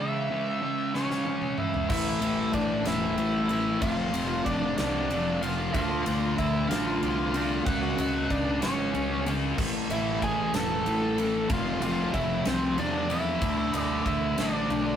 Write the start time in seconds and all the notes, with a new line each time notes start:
Already playing: C#3 E3
0.00 C#3 G#3 C#4 E5
0.30 C#3 E3 G#3 C#4
0.62 C#3 E3 G#3 C#4
0.94 C#3 E3 G#3 C#4 C#5, snare
1.11 snare
1.25 C#3 E3 G#3 C#4, high tom
1.42 mid tom
1.58 C#3 E3 E4 E5, mid tom
1.74 floor tom
1.90 A1 A2 E3 A3 E4 E5, kick, crash
2.21 A1 A2 E3 A3, ride
2.53 A1 D4 D5, kick, ride
2.85 E1 A2 E3 A3 E4 E5, snare, ride
3.17 A1 A2 E3 A3, ride
3.49 A2 E3 A3, ride
3.82 F1 F2 C3 F3 F4 E5, kick, ride
3.93 F5
4.13 F1 F2 C3 F3, ride
4.45 F1 D4 D5, kick, ride
4.77 C2 F2 C3 F3 D4 D5, snare, ride
5.10 F1 F2 C3 F3, ride
5.42 F2 C3 F3 F4 F5, ride
5.74 D2 D3 A3 D4 F4 F5, kick, ride
6.06 D2 D3 A3 D4, ride
6.38 D2 E4 E5, kick, ride
6.69 A1 D3 A3 D4 F4 F5, snare, ride
7.02 C2 D3 A3 D4, ride
7.34 D3 A3 D4, ride
7.66 C#2 C#3 G#3 C#4 F#4 F#5, kick, ride
7.98 C#2 C#3 G#3 C#4, ride
8.30 C#2 D4 D5, kick, ride
8.62 G#1 C#3 G#3 C#4 C#5, snare, ride
8.94 C#2 C#3 G#3 C#4, ride
9.26 C#3 G#3 C#4, ride
9.58 A1 A2 E3 A3, kick, crash
9.90 A1 A2 E3 A3 E4 E5, ride
10.22 A1 G#4 G#5, kick, ride
10.53 E1 A2 E3 A3 A4 A5, snare, ride
10.86 A1 A2 E3 A3, ride
11.18 A2 E3 A3, ride
11.49 F1 F2 C3 F3 F4 F5, kick, ride
11.82 F1 F2 C3 F3 F4 F5, ride
12.14 F1 E4 E5, kick, ride
12.45 C2 F2 C3 F3 C4 C5, snare, ride
12.78 E2 F2 C3 F3 D4 D5, ride
13.10 F2 C3 F3 E4 E5, ride
13.41 D2 D3 A3 D4, kick, ride
13.73 D2 D3 A3 D4, ride
13.80 D5
14.06 D2 E4 E5, kick, ride
14.38 A1 D3 A3 D4 D5, snare, ride
14.70 B1 D3 A3 D4, ride